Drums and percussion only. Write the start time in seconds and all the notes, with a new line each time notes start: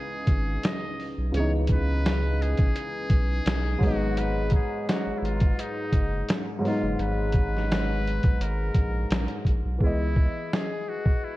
0.27 kick, closed hi-hat
0.63 finger snap, snare, closed hi-hat
1.00 open hi-hat
1.34 closed hi-hat
1.67 kick, closed hi-hat
2.06 finger snap, snare, closed hi-hat
2.42 closed hi-hat
2.58 kick, closed hi-hat
2.76 closed hi-hat
3.10 kick, closed hi-hat
3.46 finger snap, snare, closed hi-hat
3.81 kick, open hi-hat
4.17 closed hi-hat
4.50 kick, closed hi-hat
4.89 finger snap, snare, closed hi-hat
5.25 closed hi-hat
5.40 kick, closed hi-hat
5.59 closed hi-hat
5.93 kick, closed hi-hat
6.29 finger snap, snare, closed hi-hat
6.65 open hi-hat
6.99 closed hi-hat
7.32 kick, closed hi-hat
7.57 snare
7.72 finger snap, snare, closed hi-hat
8.07 closed hi-hat
8.23 kick, closed hi-hat
8.41 closed hi-hat
8.74 kick, closed hi-hat
9.10 finger snap, snare, closed hi-hat
9.28 closed hi-hat
9.45 kick, closed hi-hat
9.81 kick
10.16 kick
10.53 finger snap, snare
11.06 kick